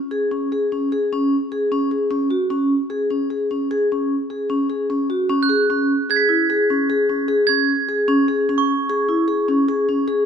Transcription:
0.11 G#4
0.31 C#4
0.52 G#4
0.72 C#4
0.92 G#4
1.13 C#4
1.52 G#4
1.72 C#4
1.91 G#4
2.11 C#4
2.30 F#4
2.50 C#4
2.90 G#4
3.10 C#4
3.30 G#4
3.51 C#4
3.71 G#4
3.92 C#4
4.30 G#4
4.50 C#4
4.70 G#4
4.90 C#4
5.10 F#4
5.29 C#4
5.43 F#6
5.49 G#4
5.70 C#4
6.10 G#4 G#6
6.16 B6
6.29 E4
6.50 G#4
6.70 C#4
6.90 G#4
7.09 C#4
7.28 G#4
7.47 C#4 G#6
7.89 G#4
8.08 C#4
8.28 G#4
8.49 C#4
8.58 C#6
8.90 G#4
9.09 E4
9.28 G#4
9.48 C#4
9.69 G#4
9.89 C#4
10.08 G#4

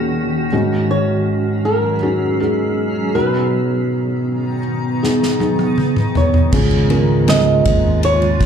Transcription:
Already playing: D#2 A#2 D#3 A#3 C#4 D#4 F#4 G#4
0.52 G#2 D#3 F#3 G#3 C#4 D#4 F#4 G#4
0.91 C#5
1.65 A#4
2.02 G#3 C#4 D#4 F#4
2.40 G#3 C#4 D#4 G#4
3.14 B2 D#3 F#3 B3 D#4 F#4 B4 A#5
5.03 B3 D#4 G#4, snare
5.23 snare
5.40 B3 D#4 G#4, high tom
5.59 high tom
5.78 mid tom
5.96 mid tom
6.15 C#5, floor tom
6.34 floor tom
6.52 C#2 G#2 C#3 G#3 C#4 F4 G#4, kick, crash
6.71 ride
6.90 G#3 C#4 F4 A#4, ride
7.28 G#3 C#4 F4 G#4 D#5, snare, ride
7.65 D#2, kick, ride
8.03 C#5, ride
8.22 ride
8.40 C#2, kick, ride

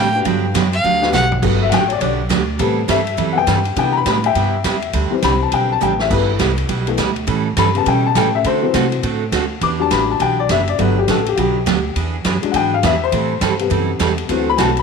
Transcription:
Already playing: A2 G5
0.14 B3 D4 F#4 G4 B4
0.25 G2 D3 F#3 B3 D4 G4, kick, ride
0.54 F#2 D3 F#3 B3 D4 G4, kick, snare, hi-hat pedal, ride
0.73 F5, ride
0.84 D2 D3 F#3 B3 D4 G4
1.02 B3 D4 F#4 G4 B4, snare
1.13 B1 D3 F#3 B3 D4 G4 F#5, snare, hi-hat pedal
1.32 floor tom
1.42 G1 D3 F#3 A3 B3 D4 G4, kick, crash
1.63 E5
1.70 A1 D3 F#3 B3 D4 G4 F#5, kick, snare, hi-hat pedal, ride
1.74 G5
1.90 D5, ride
1.99 B1 D3 F#3 B3 D4 G4 C#5, kick, ride
2.03 D5
2.29 D2 D3 F#3 B3 D4 G4, kick, snare, hi-hat pedal, ride
2.59 A2 C3 E3 G3 B3 C4 E4 A4, kick, ride
2.88 G2 E3 G3 C4 E4 A4 E5, kick, snare, hi-hat pedal, ride
3.07 ride
3.17 F#2 E3 G3 C4 E4 A4, kick, ride
3.33 C3 G3 B3 F#5
3.38 G5
3.47 G2 E3 G3 C4 E4 A4, kick, snare, hi-hat pedal, ride
3.65 ride
3.76 C3 D3 E3 G3 B3 E4 G4 G5, kick, ride
3.97 B5
4.06 A2 C3 G3 B3 E4 G4 B5, kick, snare, hi-hat pedal, ride
4.24 E5 G5, ride
4.35 G2 C3 G3 B3 E4 G4, kick, ride
4.64 E2 C3 G3 B3 E4 G4, kick, snare, hi-hat pedal, ride
4.82 ride
4.93 D2 D3 G3 C4 D4 G4, kick, ride
5.11 E3 G3 C4, muted upright bass stroke
5.22 C2 D3 G3 C4 D4 G4 B5, kick, snare, hi-hat pedal, ride
5.43 A5
5.52 B1 D3 G3 C4 D4 G4 G5, kick, ride
5.72 A5
5.81 A1 D3 G3 C4 D4 G4 G5, hi-hat pedal
5.99 E5, snare
6.10 G1 E3 G3 A3 B3 E4 G4 B4, kick, crash
6.39 C2 G3 B3 E4 G4, kick, snare, hi-hat pedal, ride
6.58 ride
6.69 B1 G3 B3 E4 G4, kick, ride
6.87 E3 A3 B3, ride
6.97 D2 G3 B3 E4 G4, kick, snare, hi-hat pedal, ride
7.16 ride
7.27 A2 E3 G3 C#4 E4 A4, kick, ride
7.57 G2 E3 G3 C#4 E4 A4 B5, kick, snare, hi-hat pedal, ride
7.75 C#3 G3 B3 A5, ride
7.86 B2 E3 G3 C#4 E4 A4 G5, kick, ride
8.06 A5
8.15 A2 E3 G3 C#4 E4 A4 G5, kick, snare, hi-hat pedal, ride
8.35 E5
8.44 D3 A3 C4 F#4 A4 C5, kick, ride
8.62 E3 F#3 C4
8.74 C3 D3 A3 C4 F#4 A4, kick, snare, hi-hat pedal, ride
8.92 ride
9.03 A2 D3 A3 C4 F#4 A4, kick, ride
9.32 D2 D3 A3 C4 F#4 A4, kick, snare, hi-hat pedal, ride
9.61 E2 E3 B3 D4 G4 D6, kick, ride
9.79 F#3 G3 D4 A5
9.91 A1 E3 B3 D4 G4 B5, kick, snare, hi-hat pedal, ride
10.11 A5
10.20 B1 E3 B3 D4 G4 G5, kick, ride
10.40 D5
10.49 F#1 E3 B3 D4 G4 E5, kick, snare, hi-hat pedal, ride
10.68 D5, ride
10.78 G1 D3 F#3 A3 B3 D4 G4 B4, kick, ride
10.99 G4
11.08 A1 D3 F#3 B3 D4 G4 A4, kick, snare, hi-hat pedal, ride
11.26 G4, ride
11.36 B1 D3 F#3 B3 D4 F#4 G4, kick, ride
11.40 G4
11.66 D2 D3 F#3 B3 D4 G4, kick, snare, hi-hat pedal, ride
11.96 E2 E3 B3 D4 G#4, kick, ride
12.24 F#2 E3 B3 D4 G#4, kick, snare, hi-hat pedal, ride
12.43 F#3 G#3 D4, muted upright bass stroke, ride
12.52 G#2 E3 B3 D4 G#4 F#5, kick, ride
12.56 G5
12.74 F5
12.83 E2 E3 B3 D4 G#4 E5, kick, snare, hi-hat pedal, ride
13.04 C5
13.12 A2 E3 G3 C4 E4 A4, kick, ride
13.41 G2 E3 G3 C4 E4 A4, kick, snare, hi-hat pedal, ride
13.59 C3 G3 B3, ride
13.70 F#2 E3 G3 C4 E4 A4, kick, ride
13.99 E2 E3 G3 C4 E4 A4, kick, snare, hi-hat pedal, ride
14.18 ride
14.29 D2 D3 E3 F#3 A3 C4 F#4 A4, kick, ride
14.49 B5
14.57 B1 D3 A3 C4 F#4 A4 G#5, kick, snare, hi-hat pedal, ride
14.61 A5
14.77 B5, ride

